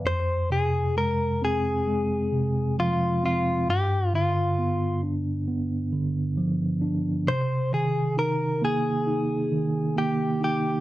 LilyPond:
<<
  \new Staff \with { instrumentName = "Clean electric guitar" } { \time 4/4 \key f \minor \tempo 4 = 67 c''8 aes'8 bes'8 aes'4. f'8 f'8 | g'8 f'4 r2 r8 | c''8 aes'8 bes'8 aes'4. g'8 g'8 | }
  \new Staff \with { instrumentName = "Tine electric piano" } { \clef bass \time 4/4 \key f \minor f,8 c8 aes8 c'8 aes8 c8 f8 c'8 | g,8 d8 b8 d'8 b8 d8 f8 d'8 | c8 ees8 ees'8 bes8 ees'8 ees8 bes8 ees'8 | }
>>